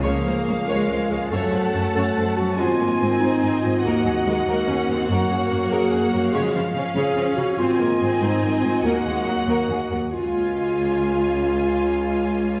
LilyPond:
<<
  \new Staff \with { instrumentName = "Violin section" } { \time 12/8 \key des \major \tempo 4. = 95 f''2. a''2. | aes''2. ges''2.~ | ges''2. f''2. | aes''2. ges''2~ ges''8 r8 |
aes''1. | }
  \new Staff \with { instrumentName = "Violin section" } { \time 12/8 \key des \major << { f''2. ges''2. | ees''1. | des''1. | ees''1~ ees''4. r8 |
f''1. | } \\ { des''8 c''8 des''8 des''8 c''8 des''8 des''8 c''8 des''8 des''8 c''8 des''8 | c''8 bes'8 c''8 c''8 bes'8 c''8 bes'8 aes'8 bes'8 bes'8 aes'8 bes'8 | bes'8 aes'8 bes'8 bes'8 aes'8 bes'8 des''8 c''8 des''8 des''8 c''8 des''8 | c''8 bes'8 c''8 c''8 bes'8 c''8 bes'8 aes'8 bes'8 bes'8 aes'8 bes'8 |
r1. | } >> }
  \new Staff \with { instrumentName = "Clarinet" } { \time 12/8 \key des \major aes'4. bes'4 aes'8 a'4. a'4 ges'8 | f'4. ees'4 f'8 ges'2. | ges'4. aes'4 ges'8 aes'4 r8 aes'4 ges'8 | f'4. ees'4 f'8 ges'2. |
f'1. | }
  \new Staff \with { instrumentName = "Viola section" } { \time 12/8 \key des \major bes4. aes4. a2. | aes8 bes8 c'2 bes8 ges8 aes8 bes8 des'8 c'8 | bes2. aes8 f8 des'2 | c'8 bes8 c'2 bes8 aes8 ges8 bes8. r8. |
f'1. | }
  \new Staff \with { instrumentName = "French horn section" } { \clef bass \time 12/8 \key des \major << { des'1. | c'2. bes2.~ | bes2. des'2. | c'2. bes2~ bes8 r8 |
des'1. | } \\ { f2. ges2. | ees1. | ges2. f2. | ees1~ ees4. r8 |
des1. | } >> }
  \new Staff \with { instrumentName = "Cello section" } { \clef bass \time 12/8 \key des \major des,8 des,8 des,8 des,8 des,8 des,8 ges,8 ges,8 ges,8 ges,8 ges,8 ges,8 | aes,8 aes,8 aes,8 aes,8 aes,8 aes,8 ees,8 ees,8 ees,8 ees,8 ees,8 ees,8 | ges,8 ges,8 ges,8 ges,8 ges,8 ges,8 des8 des8 des8 des8 des8 des8 | aes,8 aes,8 aes,8 aes,8 aes,8 aes,8 ees,8 ees,8 ees,8 ees,8 ees,8 ees,8 |
des,1. | }
>>